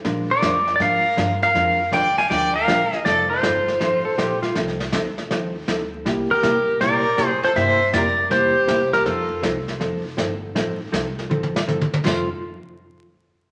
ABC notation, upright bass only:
X:1
M:4/4
L:1/8
Q:"Swing" 1/4=160
K:Fmix
V:1 name="Upright bass" clef=bass
B,,2 F,,2 _A,,2 G,,2 | F,,2 E,,2 D,,2 B,,, z | F,,,2 G,,,2 A,,,2 B,,,2 | C,,2 D,,2 E,,2 D,,2 |
C,, z C,2 B,,2 A,, z | G,,2 F,,2 z2 C,,2 | F,,2 C,,2 F,,,2 G,,,2 | A,,,2 C,,2 A,,,2 G,,,2 |
F,,, z6 z |]